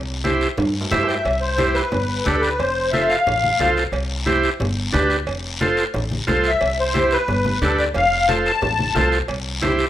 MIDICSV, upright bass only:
0, 0, Header, 1, 2, 480
1, 0, Start_track
1, 0, Key_signature, 0, "major"
1, 0, Tempo, 334635
1, 1802, Time_signature, 4, 2, 24, 8
1, 14195, End_track
2, 0, Start_track
2, 0, Title_t, "Upright bass"
2, 0, Program_c, 0, 32
2, 0, Note_on_c, 0, 36, 94
2, 642, Note_off_c, 0, 36, 0
2, 831, Note_on_c, 0, 43, 91
2, 1219, Note_off_c, 0, 43, 0
2, 1316, Note_on_c, 0, 43, 81
2, 1702, Note_off_c, 0, 43, 0
2, 1793, Note_on_c, 0, 36, 92
2, 2565, Note_off_c, 0, 36, 0
2, 2758, Note_on_c, 0, 31, 94
2, 3144, Note_off_c, 0, 31, 0
2, 3242, Note_on_c, 0, 38, 79
2, 3720, Note_on_c, 0, 29, 87
2, 3741, Note_off_c, 0, 38, 0
2, 4489, Note_off_c, 0, 29, 0
2, 4685, Note_on_c, 0, 33, 91
2, 5068, Note_off_c, 0, 33, 0
2, 5156, Note_on_c, 0, 36, 84
2, 5543, Note_off_c, 0, 36, 0
2, 5625, Note_on_c, 0, 36, 90
2, 6400, Note_off_c, 0, 36, 0
2, 6596, Note_on_c, 0, 31, 92
2, 6983, Note_off_c, 0, 31, 0
2, 7088, Note_on_c, 0, 38, 85
2, 7552, Note_on_c, 0, 29, 85
2, 7574, Note_off_c, 0, 38, 0
2, 8325, Note_off_c, 0, 29, 0
2, 8526, Note_on_c, 0, 33, 94
2, 8909, Note_off_c, 0, 33, 0
2, 9010, Note_on_c, 0, 36, 84
2, 9391, Note_off_c, 0, 36, 0
2, 9486, Note_on_c, 0, 36, 89
2, 10253, Note_off_c, 0, 36, 0
2, 10442, Note_on_c, 0, 31, 97
2, 10826, Note_off_c, 0, 31, 0
2, 10921, Note_on_c, 0, 38, 91
2, 11389, Note_on_c, 0, 29, 93
2, 11410, Note_off_c, 0, 38, 0
2, 12162, Note_off_c, 0, 29, 0
2, 12366, Note_on_c, 0, 33, 94
2, 12748, Note_off_c, 0, 33, 0
2, 12848, Note_on_c, 0, 36, 95
2, 13230, Note_off_c, 0, 36, 0
2, 13323, Note_on_c, 0, 36, 93
2, 14091, Note_off_c, 0, 36, 0
2, 14195, End_track
0, 0, End_of_file